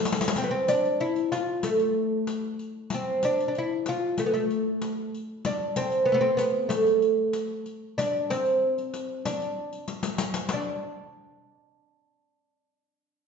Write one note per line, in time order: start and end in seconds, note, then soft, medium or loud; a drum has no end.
0.05 riq medium
0.12 riq medium
0.21 riq medium
0.28 riq medium
0.36 0.45 C4 medium
0.36 riq medium
0.44 0.51 B3 medium
0.51 0.68 C4 medium
0.68 1.00 D4 medium
0.68 riq medium
0.85 riq soft
1.00 1.31 E4 medium
1.00 riq soft
1.16 riq soft
1.32 1.65 F4 medium
1.32 riq soft
1.63 2.55 A3 medium
1.63 riq medium
1.80 riq soft
2.27 riq soft
2.59 riq soft
2.90 riq medium
2.94 3.24 C4 medium
3.23 3.47 D4 medium
3.23 riq medium
3.40 riq soft
3.48 3.55 D4 medium
3.55 3.88 E4 medium
3.55 riq soft
3.86 4.20 F4 medium
3.86 riq soft
4.18 4.25 A3 medium
4.18 riq medium
4.26 4.32 B3 medium
4.34 5.10 A3 medium
4.34 riq soft
4.50 riq soft
4.82 riq soft
5.14 riq soft
5.45 5.76 D4 medium
5.45 riq medium
5.76 6.09 C4 medium
5.76 riq medium
5.92 riq soft
6.06 6.11 B3 medium
6.06 riq soft
6.12 6.16 A3 medium
6.12 6.23 B3 medium
6.21 6.37 C4 medium
6.37 6.69 B3 medium
6.37 riq soft
6.69 7.61 A3 medium
6.69 riq medium
6.87 riq soft
7.02 riq soft
7.33 riq soft
7.66 riq soft
7.98 8.31 D4 medium
7.98 riq medium
8.30 9.28 C4 loud
8.30 riq medium
8.46 riq soft
8.78 riq soft
8.94 riq soft
9.25 9.84 D4 medium
9.25 riq medium
9.42 riq soft
9.73 riq soft
9.88 riq soft
10.03 riq medium
10.18 riq medium
10.34 riq medium
10.49 riq medium
10.53 10.82 D4 medium